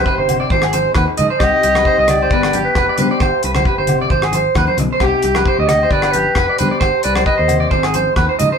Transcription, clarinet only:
0.06 0.51 C5 medium
1.39 2.10 D#5 loud
2.09 2.64 D5 loud
2.65 3.03 B4 medium
3.01 3.45 C5 medium
5.02 5.70 G4 loud
5.68 5.92 D#5 loud
5.91 6.13 D5 loud
6.12 6.60 B4 medium
6.58 7.06 C5 medium
7.04 7.26 D5 medium
7.26 7.68 D#5 medium

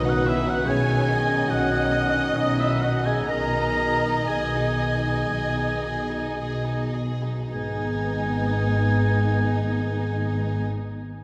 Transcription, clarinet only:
0.06 0.28 F#4 medium
0.26 0.48 E4 medium
0.46 0.67 F#4 medium
0.65 1.50 G#4 medium
1.49 2.38 F#4 soft
2.37 2.61 D#4 soft
2.60 2.85 E4 soft
2.83 3.08 F#4 soft
3.06 3.30 G#4 soft
3.28 4.28 A#4 medium
4.28 6.91 G#4 soft
7.51 10.65 G#4 soft

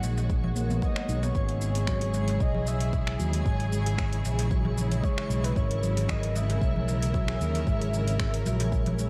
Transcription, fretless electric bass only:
0.03 0.79 A#1 medium
1.08 1.30 B1 medium
1.35 2.37 G#1 medium
3.20 3.41 D#2 medium
3.46 4.21 G#1 loud
4.25 5.00 A#1 medium
5.30 5.51 B1 medium
5.56 6.58 G#1 loud
6.61 7.37 B1 medium
7.40 7.62 D#2 loud
7.67 8.42 G#1 loud
8.46 9.10 A#1 medium

